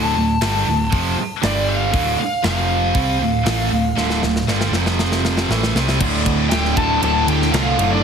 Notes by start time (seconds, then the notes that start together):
Already playing: D1 D2 A2 D3 A5
0.16 D1 D2 A2
0.41 G1 G2 D3 G3, snare, open hi-hat
0.66 D1 D2 A2
0.92 F1 F2 C3 F3, kick, open hi-hat
1.17 muted picked electric bass stroke, muted distorted electric guitar stroke
1.43 G1 G2 D3 G3 D5, snare, open hi-hat
1.69 F5
1.94 D1 D2 A2 D3, kick, open hi-hat
2.19 F5, muted distorted electric guitar stroke
2.43 F1 F2 C3 F3 F5, snare, open hi-hat
2.95 C2 C3 G3 C4, kick, open hi-hat
3.20 D1 D2 A2
3.45 A1 A2 E3 A3, snare, open hi-hat
3.70 D1 D2 A2
3.95 D1 D2 A2 D3, snare
4.10 snare
4.22 D1 D2 A2, snare
4.36 snare
4.47 G1 G2 D3 G3, snare
4.61 snare
4.71 F1 F2 C3 F3, snare
4.86 snare
4.99 snare
5.12 snare
5.25 snare
5.37 snare
5.49 A1 A2 E3 A3, snare
5.63 snare
5.74 C2 C3 G3 C4, snare
5.88 snare
6.00 D1 D2 A2 D3, kick, crash
6.26 D2, kick, ride
6.50 D1 D2 A2 D3 G4 G5, snare, ride
6.65 snare
6.76 D1 D2 A2 D3 A4 A5, kick, ride
7.02 D1 D2 A2 D3 A4 A5, ride
7.27 D2 G4 G5, ride
7.42 snare
7.52 C2 D2 A2 D3 F4 F5, snare, ride
7.78 F#1 D2 A2 D3, ride
7.92 D4 D5